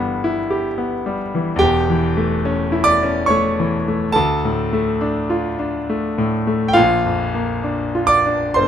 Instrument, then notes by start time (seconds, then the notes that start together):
grand piano
Already playing: G1 G2 E3 G3 B3 B4 B5
0.24 E4
0.50 G4
0.78 B3
1.06 G3
1.35 E3
1.56 E2 G4 G5
1.61 E1
1.90 E3
2.17 A3
2.45 C#4
2.72 E4
2.84 D5 D6
3.03 C#4
3.26 A3 C#5 C#6
3.60 E3
3.88 A3
4.12 D2 A4 A5
4.45 A2
4.73 A3
5.01 D4
5.30 F4
5.59 D4
5.89 A3
6.18 A2
6.47 A3
6.68 G5
6.73 A#1 F4 F5
7.05 F2
7.34 A#3
7.64 D4
7.95 F4
8.07 D5 D6
8.26 D4
8.54 C5 C6
8.59 G1